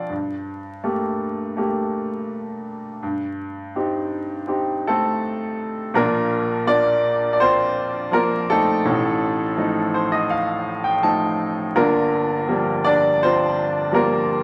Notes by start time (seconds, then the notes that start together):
Already playing: F3 C4 D4 D5 F5 G5 A5
0.09 G2
0.84 A3 A#3 G4
1.57 A3 A#3 G4
3.03 G2
3.75 C4 D#4 G4
4.47 C4 D#4 G4
4.87 A3 C4 A4
5.94 A#1 A#2 A#3 D4 F4 A#4
6.67 A#3 D4 F4 D5
7.33 D5
7.40 C4 F4 C5
8.11 F3 A#3 F4 A#4 D5
8.50 A3 C4 D#4 A4
8.85 A1 A2
9.57 F3 A3 D#4
9.94 C5
10.12 D#5
10.30 F5
10.84 G5
11.03 F3 A3 D#4 A5
11.76 G1 G2 A#3 D4 F4 A#4
12.47 F3 G3 A#3
12.84 D4 D5
13.23 C4 F4 C5
13.91 F3 G3 A#3 A#4
13.96 A#3 F4